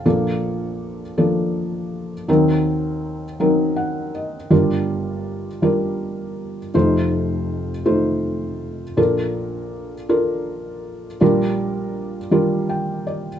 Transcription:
<<
  \new Staff \with { instrumentName = "Felt piano" } { \time 6/8 \key bes \major \tempo 4. = 54 << { r2. | r2 ges''8 ees''8 | r2. | r2. |
r2. | r2 g''8 d''8 | } \\ { <f bes d' a'>4. <f bes d' a'>4. | <ges c' ees' bes'>4. <ges c' ees' bes'>4. | <g d' f' bes'>4. <g d' f' bes'>4. | <a ees' f' c''>4. <a ees' f' c''>4. |
<d' f' a' bes'>4. <d' f' a' bes'>4. | <g d' f' bes'>4. <g d' f' bes'>4. | } >> }
  \new Staff \with { instrumentName = "Felt piano" } { \clef bass \time 6/8 \key bes \major <bes,, bes,>2. | <ees, ees>2. | <g,, g,>2. | <f,, f,>2. |
<bes,, bes,>2. | <bes,, bes,>2. | }
>>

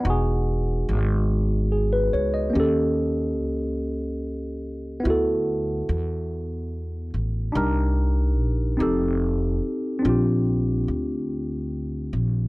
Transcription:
<<
  \new Staff \with { instrumentName = "Tine electric piano" } { \time 6/8 \key e \lydian \tempo 4. = 48 << { r2 gis'16 b'16 cis''16 dis''16~ | dis''16 r2 r8. | r2. | r2. |
r2. | } \\ { <b dis' fis' gis'>2. | <ais cis' g' a'>2. | <b e' fis' a'>2. | <d' ees' g' bes'>4. <c' ees' g' a'>4. |
<bis d' eis' g'>2. | } >> }
  \new Staff \with { instrumentName = "Upright bass" } { \clef bass \time 6/8 \key e \lydian e,,4 gis,,4. cis,8 | dis,4 cis,2 | d,4 e,4. a,,8 | c,4 bes,,8 f,,4 r8 |
ais,,4 d,4. ais,,8 | }
>>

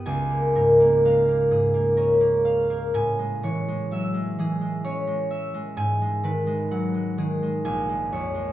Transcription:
<<
  \new Staff \with { instrumentName = "Harp" } { \time 3/4 \key cis \minor \tempo 4 = 63 << { gis''2. | gis''2. | gis''2 gis''4 | } \\ { r8 ais'8 eis''8 gis'8 ais'8 eis''8 | r8 cis''8 e''8 gis'8 cis''8 e''8 | r8 b'8 fis''8 gis'4 cis''8 | } >> }
  \new Staff \with { instrumentName = "Harp" } { \clef bass \time 3/4 \key cis \minor cis,16 ais16 gis,16 ais16 gis16 ais16 gis,16 ais16 cis'16 ais8 ais16 | a,16 gis16 e16 gis16 fis16 gis16 e16 gis16 cis'16 gis8 gis16 | gis,16 gis16 dis16 gis16 fis16 gis16 dis16 gis16 ais,,16 gis16 eis,16 gis16 | }
>>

